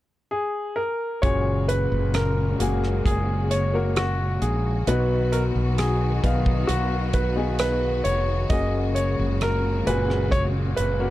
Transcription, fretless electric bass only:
1.23 F#1
1.92 F#1
2.60 F#1
3.06 F#1
4.42 A#1
4.87 B1
5.56 B1
6.24 B1
6.69 B1
8.05 F1
8.50 F#1
9.19 F#1
9.87 F#1
10.78 F#1

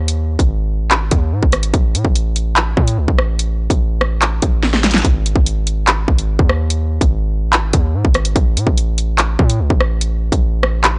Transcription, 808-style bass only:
Already playing: D#2
0.39 G#1
0.80 A1
0.96 G#1
1.12 D#2
1.32 G#2
1.43 G#1
1.74 A1
1.94 A2
2.05 A1
2.77 A2
2.98 C#2
3.08 A1
3.70 A1
4.42 A1
5.05 G#1
5.36 G#1
6.08 G#1
6.39 D#2
7.01 G#1
7.43 A1
7.58 G#1
7.74 D#2
7.94 G#2
8.05 G#1
8.36 A1
8.56 A2
8.67 A1
9.39 A2
9.60 C#2
9.70 A1
10.32 A1

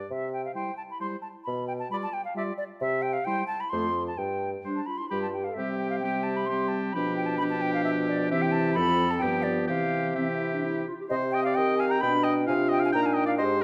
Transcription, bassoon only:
0.10 C3
1.47 B2
2.81 C3
3.73 F2
4.18 G2
5.11 G2
5.58 C3
6.96 B2
8.32 C3
8.78 F2
9.22 G2
9.69 C3
11.11 C3
11.58 D#3
12.03 B2
12.49 C3
12.95 A#2
13.40 G#2

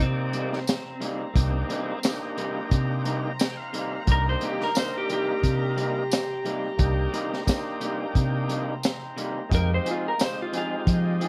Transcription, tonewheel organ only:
Already playing: A#3 D#4 G4 D5
1.34 A#3 D4 D#4 G4
2.03 A#3 D4 D#4 G4
3.39 G5
3.57 F5
4.05 A#3 D4 D#4 G4
4.75 A#3 D4 D#4 A#4
6.77 A#3 D4 D#4 G4
7.45 A#3 D4 D#4 G4
9.49 G#3 C4 D#4 G4
10.18 G#3 C4 D#4 G4

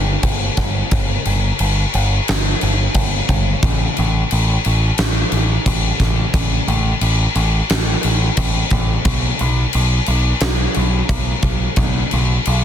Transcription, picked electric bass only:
Already playing: G1
0.23 G1
0.57 G1
0.92 G1
1.26 G1
1.60 G1
1.95 G1
2.30 G1
2.63 G1
2.94 G1
3.29 G1
3.63 A1
3.99 A1
4.32 A1
4.66 A1
4.99 A1
5.32 A1
5.67 A1
6.00 A1
6.34 A1
6.68 A1
7.01 A1
7.36 A1
7.71 A1
8.04 A1
8.38 A1
8.72 A1
9.05 B1
9.41 B1
9.75 B1
10.08 B1
10.41 B1
10.77 B1
11.09 B1
11.43 B1
11.77 B1
12.13 B1
12.47 B1

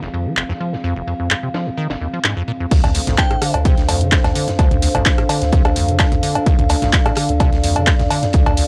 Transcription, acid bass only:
0.02 F1
0.14 F2
0.26 F3
0.37 F1
0.49 F2
0.60 F3
0.73 F2
0.84 F2
0.96 F1
1.07 F2
1.20 F2
1.31 G2
1.43 C3
1.54 F3
1.67 F2
1.78 D#3
1.90 F1
2.01 D#2
2.13 F3
2.25 G#2
2.37 F2
2.48 A#2
2.60 F2
2.71 D2
2.84 D1
2.95 D2
3.07 D2
3.18 E2
3.31 A2
3.42 D3
3.54 D2
3.65 C3
3.78 D1
3.89 D2
4.01 D3
4.12 D1
4.24 D2
4.35 D3
4.48 D2
4.59 D2
4.71 D1
4.82 D2
4.95 D2
5.06 E2
5.18 A2
5.29 D3
5.42 D2
5.53 C3
5.65 D1
5.76 D2
5.88 D3
6.00 D1
6.12 D2
6.23 D3
6.35 D2
6.46 D2
6.59 D1
6.70 D2
6.82 D2
6.93 E2
7.06 A2
7.17 D3
7.29 D2
7.40 C3
7.53 D1
7.64 D2
7.76 D3
7.87 D1
7.99 D2
8.11 D3
8.23 D2
8.34 D2
8.46 D1
8.57 D2

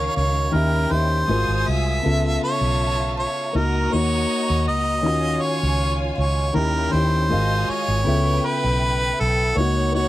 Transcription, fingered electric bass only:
0.17 C#2
0.54 D#2
0.91 D#2
1.29 G#1
1.48 G#1
1.68 C2
2.06 C#2
2.61 B1
3.55 C#2
3.94 D#2
4.50 D#2
4.69 C#2
5.06 D#2
5.63 C#2
6.18 C#2
6.56 D#2
6.93 D#2
7.31 G#1
7.69 muted fingered electric bass stroke
7.88 G#1
8.07 C#2
8.64 B1
9.21 B1
9.57 C#2

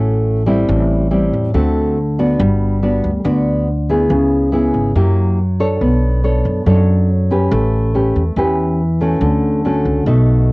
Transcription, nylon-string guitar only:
Already playing: A2 A3 C#4 F#4
0.46 G3 C4 E4
0.69 A2
1.11 G3 C4 E4
1.54 D3 A3 C4 F#4
2.19 B3 D4 F#4
2.40 G3
2.83 B3 D4 F#4
3.24 D3 B3 D4 F#4
3.89 B3 E4 G#4
4.10 C#3
4.52 B3 E4 G#4
4.95 F#3 A#3 E4 G4
5.60 D4 A4 C#5
5.81 B3
6.24 D4 A4 C#5
6.66 F#3 D4 A4 C#5
7.31 C#4 G4 B4
7.51 A3
7.95 C#4 G4 B4
8.37 E3 C#4 G4 B4
9.01 A3 C#4 F#4
9.22 D3
9.65 A3 C#4 F#4
10.07 B2 A3 D#4 F#4

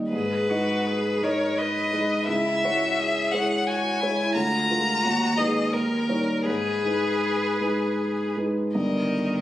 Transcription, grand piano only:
Already playing: D#2 G3 D#4 D#5
0.13 G#2
0.50 G#3 D#4 D#5
1.22 G#3 D#4 D#5
1.93 G#3 D#4 D#5
2.28 C#2
2.64 G#3 E4 C#5
3.33 G#3 E4 C#5
4.03 G#3 E4 C#5
4.35 D2
4.70 G#3 F4 A#4
5.04 D#2
5.38 G#3 D#4 B4
5.73 D#2
6.09 G3 D#4 C#5
6.47 G#2
6.84 G#3 D#4 B4
7.60 G#3 D#4 B4
8.37 G#3 D#4 B4
8.75 G1 G2

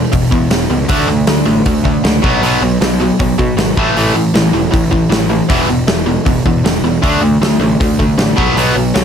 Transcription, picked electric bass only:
0.14 E1
0.32 E2
0.51 E1
0.70 C#2
0.90 D2
1.08 D2
1.28 D2
1.46 A1
1.66 D2
2.04 C#2
2.23 B1
2.42 B1
2.61 B1
2.80 B1
3.20 B1
3.39 B2
3.57 G#1
3.77 A1
3.96 A1
4.14 A1
4.34 A1
4.53 E1
4.74 A1
5.10 A1
5.50 E1
5.68 E1
5.88 E1
6.26 E1
6.46 E2
6.64 E1
6.82 E1
7.03 D2
7.21 D2
7.40 D2
7.59 A1
7.80 D2
8.17 A1
8.38 B1
8.56 B1
8.76 B1
8.95 B1

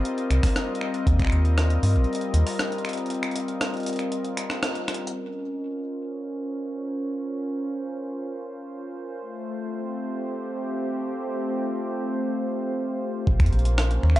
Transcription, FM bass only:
0.31 C2
1.07 D#2
1.20 A#1
1.32 D#2
1.83 G2
1.96 A#1
2.34 D#2
13.27 A#1
13.40 F2
13.53 A#1
14.03 D#2
14.16 F1

